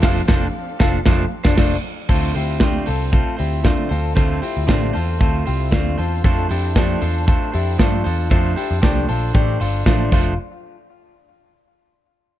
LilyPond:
<<
  \new Staff \with { instrumentName = "Upright piano" } { \time 4/4 \key f \major \tempo 4 = 116 f''4. f''4 r4. | r1 | r1 | r1 |
r1 | r1 | }
  \new Staff \with { instrumentName = "Clean electric guitar" } { \time 4/4 \key f \major <f' a'>8 <f' a'>8 r8 <f' a'>8 <f' a'>8 r16 <d' f'>16 <d' f'>8 r8 | <f' a'>8 <e' g'>8 <d' g'>8 <f' a'>8 <f' a'>8 <e' g'>8 <d' f'>8 <f' a'>8 | <f' a'>8 <e' g'>8 <d' g'>8 <f' a'>8 <f' a'>8 <e' g'>8 <d' f'>8 <f' a'>8 | <f' a'>8 <e' g'>8 <d' g'>8 <f' a'>8 <f' a'>8 <e' g'>8 <d' f'>8 <f' a'>8 |
<f' a'>8 <e' g'>8 <d' g'>8 <f' a'>8 <d' g'>8 <d' f'>8 <d' f'>8 f'8 | r1 | }
  \new Staff \with { instrumentName = "Clean electric guitar" } { \time 4/4 \key f \major <f a d' a' c''>8 <d' a' c''>8 r8 <d' a' c''>8 <f a d' a' c''>8 r16 <d' a' c''>16 <a d' a' c''>8 r8 | <d a c' f' c''>8 <c' f' c''>8 <d a c' f' c''>8 <c' f' c''>8 <a c' f' c''>8 <c' f' c''>8 <d a c' f' c''>8 <c' f' c''>8 | <d a c' f' c''>8 <c' f' c''>8 <d a c' f' c''>8 <c' f' c''>8 <a c' f' c''>8 <c' f' c''>8 <d a c' f' c''>8 <c' f' c''>8 | <f a d' a' c''>8 <d' a' c''>8 <f a d' a' c''>8 <d' a' c''>8 <a d' a' c''>8 <d' a' c''>8 <f a d' a' c''>8 <d' a' c''>8 |
<f a d' a' c''>8 <d' a' c''>8 <f a d' a' c''>8 <d' a' c''>8 <a d' a' c''>8 <d' a' c''>8 <f a d' a' c''>8 <f a d' a' c''>8 | r1 | }
  \new Staff \with { instrumentName = "String section" } { \time 4/4 \key f \major <f c' d' g' a'>1 | r1 | r1 | r1 |
r1 | r1 | }
  \new Staff \with { instrumentName = "Picked electric bass" } { \clef bass \time 4/4 \key f \major f,,8 f,,8 r8 f,,8 f,,8 r16 f,,16 f,,8 r8 | d,8 d,4 c,8. r16 d,8. r16 d,8 | d,8 r16 d,16 a,,8 e,8 d,8 c,8 d,8 e,8 | f,8 f,4 e,8. r16 f,8 g,8 e,8 |
f,8 r16 f,16 c,8 bes,,8 a,,8 g,,8 a,,8 f,,8 | r1 | }
  \new DrumStaff \with { instrumentName = "Drums" } \drummode { \time 4/4 <cymc bd sn>8 <bd sn>8 r8 <bd sn>8 <bd sn>8. <bd sn>16 <cymc bd sn>4 | <cymc bd>8 hho8 <hh bd sn>8 hho8 <hh bd>8 hho8 <hh bd sn>8 hho8 | <hh bd>8 hho8 <hh bd sn>8 hho8 <hh bd>8 hho8 <hh bd sn>8 hho8 | <hh bd>8 hho8 <hh bd sn>8 hho8 <hh bd>8 hho8 <hh bd sn>8 hho8 |
<hh bd>8 hho8 <hh bd sn>8 hho8 <hh bd>8 hho8 <hh bd sn>8 <cymc bd>8 | r4 r4 r4 r4 | }
>>